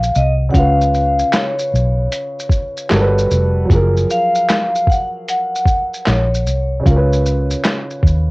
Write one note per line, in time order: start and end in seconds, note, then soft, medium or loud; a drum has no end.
0.00 0.49 F3 medium
0.00 0.48 F#3 medium
0.00 0.51 G#4 medium
0.00 0.53 A#4 medium
0.00 0.17 F5 medium
0.00 shaker soft
0.15 0.49 C2 medium
0.15 0.32 D#5 medium
0.15 shaker soft
0.49 2.84 C#3 medium
0.49 2.86 C#4 medium
0.49 0.55 F#5 medium
0.54 1.22 C#2 loud
0.54 2.88 F4 medium
0.54 1.36 F5 loud
0.54 kick loud
0.54 closed hi-hat medium
0.54 shaker medium
0.59 2.89 B4 medium
0.81 shaker soft
0.94 shaker medium
1.19 shaker soft
1.33 3.28 C#5 medium
1.33 snare loud
1.33 clap medium
1.33 closed hi-hat medium
1.33 shaker medium
1.59 shaker soft
1.74 2.07 B1 medium
1.74 shaker soft
2.12 closed hi-hat medium
2.12 shaker medium
2.40 shaker soft
2.50 kick medium
2.50 shaker medium
2.77 shaker soft
2.90 3.25 G1 medium
2.90 3.69 G3 medium
2.90 3.70 F#4 medium
2.90 3.71 A4 medium
2.90 snare loud
2.90 clap medium
2.90 closed hi-hat medium
2.90 shaker medium
2.94 3.01 A#4 medium
3.01 3.75 B4 medium
3.19 shaker soft
3.31 3.65 F1 medium
3.31 shaker soft
3.65 6.81 F3 medium
3.65 6.79 F#3 medium
3.70 4.04 F#1 loud
3.70 6.83 G#4 medium
3.70 kick loud
3.70 closed hi-hat medium
3.70 shaker medium
3.75 6.84 A#4 medium
3.97 shaker soft
4.10 4.92 F5 loud
4.10 shaker medium
4.35 shaker medium
4.49 snare loud
4.49 clap loud
4.49 closed hi-hat medium
4.49 shaker medium
4.75 shaker soft
4.87 5.07 F#5 loud
4.87 kick loud
4.91 shaker soft
5.28 6.10 F#5 loud
5.28 closed hi-hat medium
5.28 shaker medium
5.55 shaker soft
5.65 kick loud
5.65 shaker medium
5.94 shaker soft
6.06 6.47 A#1 loud
6.06 8.31 C#5 medium
6.06 snare loud
6.06 clap medium
6.06 closed hi-hat medium
6.06 shaker medium
6.34 shaker medium
6.47 6.81 C2 medium
6.47 shaker soft
6.80 8.31 C#3 medium
6.80 8.31 C#4 medium
6.86 7.54 C#2 loud
6.86 8.31 F4 medium
6.86 6.96 A#4 medium
6.86 kick loud
6.86 closed hi-hat medium
6.86 shaker medium
6.96 8.31 B4 medium
7.13 shaker soft
7.26 shaker medium
7.51 shaker medium
7.64 snare loud
7.64 clap medium
7.64 closed hi-hat medium
7.64 shaker medium
7.90 shaker soft
8.03 8.31 D#2 medium
8.03 kick medium
8.03 shaker soft